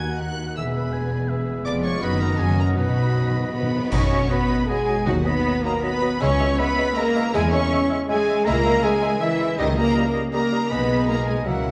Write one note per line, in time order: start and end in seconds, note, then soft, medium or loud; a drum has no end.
0.00 0.53 D#2 medium
0.00 0.54 D#2 medium
0.00 0.59 D#3 medium
0.00 0.54 A#3 medium
0.00 0.59 A#3 soft
0.00 0.47 D#4 medium
0.00 0.54 D#4 medium
0.00 0.39 F#4 soft
0.00 0.52 F#4 medium
0.00 0.54 F#4 medium
0.00 0.29 A#4 medium
0.00 0.53 A#4 medium
0.00 0.59 D#5 medium
0.00 0.53 F#5 medium
0.00 0.20 F#5 medium
0.00 0.22 G#5 medium
0.00 0.20 G#6 loud
0.12 0.59 A#5 medium
0.20 0.58 F#5 medium
0.20 0.59 F#5 medium
0.20 0.57 F#6 loud
0.30 0.59 A#4 medium
0.40 0.59 F#4 medium
0.48 0.59 D#4 medium
0.56 1.66 E1 medium
0.56 1.66 E2 medium
0.56 1.68 E3 medium
0.56 1.62 G#3 medium
0.56 1.62 B3 medium
0.56 2.40 B3 medium
0.56 1.62 G#4 medium
0.56 2.03 G#4 medium
0.56 1.62 B4 medium
0.56 0.75 E5 medium
0.56 0.94 E5 medium
0.56 0.64 E6 medium
0.66 1.56 G#3 medium
0.74 0.92 B3 medium
0.74 1.11 B4 medium
0.74 1.11 B5 medium
0.84 1.39 G#4 medium
0.93 1.47 B3 medium
0.93 1.30 G#5 medium
1.02 1.20 B4 medium
1.12 1.29 G#5 medium
1.21 2.41 B4 medium
1.29 1.67 E5 medium
1.29 2.04 G#5 medium
1.40 2.04 G#4 medium
1.49 1.84 B3 medium
1.57 1.75 G#3 medium
1.65 2.00 F1 medium
1.65 2.00 F2 medium
1.65 2.04 F3 medium
1.65 2.00 G#3 medium
1.65 2.00 B3 medium
1.65 2.00 F4 medium
1.65 2.00 B4 medium
1.65 1.87 D5 loud
1.65 2.02 D5 medium
1.65 1.74 D6 loud
1.76 2.04 G#3 medium
1.85 2.30 B3 medium
1.85 2.01 C#5 loud
1.85 2.02 C#6 loud
1.94 2.04 F4 medium
2.02 2.38 F#1 medium
2.02 2.38 F#2 medium
2.02 2.39 F#2 medium
2.02 2.38 F#3 medium
2.02 2.39 B3 loud
2.02 2.39 D#4 medium
2.02 2.38 F#4 medium
2.02 2.22 B4 loud
2.02 2.76 D#5 medium
2.02 2.21 B5 loud
2.12 2.41 D#3 medium
2.20 2.57 F#3 medium
2.20 2.40 A#4 loud
2.20 2.40 A#5 loud
2.31 2.42 B3 medium
2.38 2.77 F#1 medium
2.38 2.77 F#2 medium
2.38 2.79 F#2 medium
2.38 2.75 F#3 medium
2.38 3.54 F#3 medium
2.38 2.77 C#4 medium
2.38 2.78 C#4 medium
2.38 2.75 F#4 medium
2.38 2.57 G#4 medium
2.38 2.59 G#5 loud
2.49 2.79 C#3 medium
2.58 2.96 F#3 medium
2.58 2.78 A#4 medium
2.58 2.67 A#5 loud
2.68 2.79 C#4 medium
2.76 3.73 B1 medium
2.76 3.54 B2 medium
2.76 2.83 B2 soft
2.76 3.92 B2 medium
2.76 3.52 F#3 medium
2.76 3.53 B3 medium
2.76 3.53 D#4 medium
2.76 3.73 D#4 medium
2.76 3.70 F#4 medium
2.76 3.53 B4 medium
2.76 3.71 D#5 medium
2.76 3.53 B5 loud
2.84 2.91 B2 soft
2.84 4.30 B3 medium
2.92 2.99 B2 soft
2.97 3.07 B2 soft
2.97 3.82 F#3 medium
3.07 3.15 B2 soft
3.07 3.25 D#4 medium
3.16 3.22 B2 medium
3.16 3.63 F#4 medium
3.23 3.30 B2 medium
3.23 3.73 D#4 medium
3.31 3.38 B2 medium
3.36 3.46 B2 medium
3.36 3.53 D#5 medium
3.45 3.53 B2 medium
3.45 6.23 F#5 medium
3.53 3.61 B2 medium
3.53 3.89 B3 medium
3.53 3.89 B4 medium
3.53 6.23 D#5 medium
3.53 3.89 B5 medium
3.53 3.90 B5 medium
3.63 3.70 B2 medium
3.63 4.67 F#4 soft
3.71 3.77 B2 loud
3.71 4.49 D#4 medium
3.78 3.86 B2 loud
3.83 4.11 F#3 medium
3.90 4.24 B1 medium
3.90 5.08 B2 medium
3.90 4.01 F#3 medium
3.90 4.29 C#4 medium
3.90 4.30 C#4 loud
3.90 4.09 D#4 medium
3.90 4.09 F#4 medium
3.90 4.30 C#5 loud
3.90 4.01 D#5 medium
3.90 4.29 C#6 loud
3.90 4.30 C#6 loud
3.90 concert bass drum medium
3.90 crash medium
4.10 4.20 F#3 medium
4.10 6.23 F#3 medium
4.10 4.19 D#5 medium
4.29 4.39 F#3 medium
4.29 4.67 B3 loud
4.29 4.67 B3 medium
4.29 5.25 B3 medium
4.29 4.69 B4 loud
4.29 4.39 D#5 medium
4.29 4.70 B5 loud
4.29 4.69 B5 loud
4.49 4.59 F#3 medium
4.49 4.86 D#4 medium
4.49 4.58 D#5 medium
4.67 4.78 F#3 medium
4.67 5.06 G#3 medium
4.67 5.63 F#4 medium
4.67 5.06 G#4 loud
4.67 4.78 D#5 medium
4.67 5.09 G#5 loud
4.67 5.06 G#5 loud
4.87 4.97 F#3 medium
4.87 5.44 D#4 medium
4.87 4.96 D#5 medium
5.05 5.39 D#2 medium
5.05 6.22 D#3 medium
5.05 5.60 D#3 loud
5.05 5.25 F#3 medium
5.05 5.26 F#3 medium
5.05 5.16 F#3 medium
5.05 5.24 D#4 medium
5.05 5.24 F#4 medium
5.05 5.14 F#4 medium
5.05 5.14 D#5 medium
5.05 5.27 F#5 medium
5.05 5.26 F#5 loud
5.24 5.34 F#3 medium
5.24 5.63 B3 loud
5.24 6.58 B3 medium
5.24 5.63 B3 loud
5.24 5.64 B4 medium
5.24 5.34 D#5 medium
5.24 5.63 B5 medium
5.24 5.64 B5 loud
5.45 5.54 F#3 medium
5.45 6.23 D#4 medium
5.45 5.54 D#5 medium
5.63 5.73 F#3 medium
5.63 5.83 A#3 loud
5.63 6.01 F#4 medium
5.63 5.84 A#4 medium
5.63 5.74 D#5 medium
5.63 5.83 A#5 loud
5.82 5.92 F#3 medium
5.82 6.21 B3 loud
5.82 6.20 B3 medium
5.82 7.36 B4 medium
5.82 6.22 B4 loud
5.82 5.91 D#5 medium
5.82 6.20 B5 loud
5.82 6.24 B5 loud
6.02 6.11 F#3 medium
6.02 6.23 F#4 medium
6.02 6.10 D#5 medium
6.20 6.53 C#2 loud
6.20 7.36 C#3 medium
6.20 6.30 G#3 medium
6.20 6.58 C#4 loud
6.20 6.38 E4 medium
6.20 6.38 G#4 medium
6.20 6.58 C#5 loud
6.20 6.29 E5 medium
6.20 6.59 C#6 loud
6.20 6.60 C#6 loud
6.39 6.48 G#3 medium
6.39 7.52 G#3 medium
6.39 6.48 E5 medium
6.58 6.67 G#3 medium
6.58 6.96 B3 loud
6.58 7.36 B3 medium
6.58 6.97 B3 loud
6.58 6.96 B4 loud
6.58 6.67 E5 medium
6.58 6.99 B5 loud
6.58 6.96 B5 loud
6.75 6.87 G#3 medium
6.75 7.13 E4 medium
6.75 6.84 E5 medium
6.95 7.05 G#3 medium
6.95 7.33 A#3 loud
6.95 7.90 G#4 medium
6.95 7.33 A#4 loud
6.95 7.04 E5 medium
6.95 7.35 A#5 loud
6.95 7.34 A#5 loud
7.15 7.24 G#3 medium
7.15 7.71 E4 medium
7.15 7.24 E5 medium
7.33 7.66 E2 loud
7.33 8.47 E3 loud
7.33 7.53 G#3 loud
7.33 7.43 G#3 loud
7.33 7.53 G#3 loud
7.33 7.52 E4 loud
7.33 7.53 G#4 loud
7.33 7.52 G#4 loud
7.33 7.42 E5 medium
7.33 7.52 G#5 loud
7.33 7.54 G#5 loud
7.52 7.61 G#3 medium
7.52 8.64 G#3 medium
7.52 7.90 C#4 loud
7.52 7.90 C#5 loud
7.52 7.61 E5 medium
7.52 7.83 C#6 loud
7.52 7.91 C#6 loud
7.71 7.79 G#3 medium
7.71 8.08 E4 medium
7.71 7.80 E5 medium
7.90 8.00 G#3 medium
7.90 8.27 G#4 medium
7.90 7.98 E5 medium
8.08 8.17 G#3 medium
8.08 8.43 G#3 loud
8.08 8.44 G#3 loud
8.08 9.01 E4 medium
8.08 8.43 G#4 loud
8.08 8.18 E5 medium
8.08 8.46 G#5 loud
8.08 8.44 G#5 loud
8.28 8.36 G#3 medium
8.28 8.37 E5 medium
8.45 8.77 C#2 loud
8.45 9.57 C#3 medium
8.45 8.55 G#3 loud
8.45 8.83 A#3 loud
8.45 8.84 A#3 loud
8.45 8.64 E4 loud
8.45 8.64 G#4 loud
8.45 8.83 A#4 loud
8.45 8.55 E5 medium
8.45 8.85 A#5 loud
8.45 8.84 A#5 loud
8.64 8.73 G#3 medium
8.64 9.60 G#3 medium
8.64 8.74 E5 medium
8.83 9.21 G#3 loud
8.83 8.92 G#3 medium
8.83 9.21 G#3 loud
8.83 9.95 A#3 medium
8.83 9.21 G#4 loud
8.83 8.91 E5 medium
8.83 9.21 G#5 loud
9.02 9.10 G#3 medium
9.02 9.11 E5 medium
9.20 9.58 E3 loud
9.20 9.29 G#3 medium
9.20 9.58 E4 loud
9.20 9.60 G#4 medium
9.20 9.29 E5 medium
9.20 9.58 E5 loud
9.20 9.59 E5 loud
9.39 9.48 G#3 medium
9.39 9.60 E4 medium
9.39 9.48 E5 medium
9.58 9.90 C#2 loud
9.58 10.73 C#3 loud
9.58 9.77 D#3 loud
9.58 9.67 G3 medium
9.58 9.77 D#4 loud
9.58 9.76 D#4 medium
9.58 9.76 G4 medium
9.58 9.64 D#5 loud
9.58 9.67 D#5 medium
9.58 9.77 D#5 loud
9.76 10.72 G3 medium
9.76 9.86 G3 medium
9.76 10.13 A#3 loud
9.76 10.14 A#3 loud
9.76 10.14 A#4 loud
9.76 9.85 D#5 medium
9.76 10.14 A#5 loud
9.95 10.05 G3 medium
9.95 10.72 A#3 medium
9.95 10.04 D#5 medium
10.13 10.23 G3 medium
10.13 10.50 D#4 medium
10.13 10.22 D#5 medium
10.32 10.42 G3 medium
10.32 10.68 A#3 medium
10.32 10.69 A#3 loud
10.32 10.72 G4 medium
10.32 10.68 A#4 loud
10.32 10.41 D#5 medium
10.32 10.69 A#5 loud
10.32 10.74 A#5 loud
10.51 10.61 G3 medium
10.51 11.27 D#4 medium
10.51 10.61 D#5 medium
10.70 11.43 B1 medium
10.70 11.49 B2 medium
10.70 11.48 G#3 medium
10.70 11.09 B3 loud
10.70 11.10 B3 medium
10.70 11.43 D#4 medium
10.70 11.43 G#4 medium
10.70 11.09 B4 loud
10.70 11.48 D#5 medium
10.70 11.09 B5 loud
10.70 11.10 B5 loud
10.90 11.49 B3 medium
11.09 11.71 G#3 medium
11.09 11.17 A#3 loud
11.09 11.28 A#3 medium
11.09 11.28 A#4 loud
11.09 11.29 A#5 loud
11.09 11.28 A#5 loud
11.27 11.46 G#3 medium
11.27 11.47 G#3 medium
11.27 11.49 D#4 medium
11.27 11.47 G#4 medium
11.27 11.47 G#5 medium
11.45 11.71 C#2 medium
11.45 11.71 C#3 medium
11.45 11.71 F#3 medium
11.45 11.71 A#3 medium
11.45 11.71 E4 medium
11.45 11.71 F#4 medium
11.45 11.71 A#4 medium
11.45 11.71 E5 medium
11.45 11.71 F#5 loud
11.45 11.71 F#5 medium
11.66 11.71 E4 medium
11.66 11.71 G#4 medium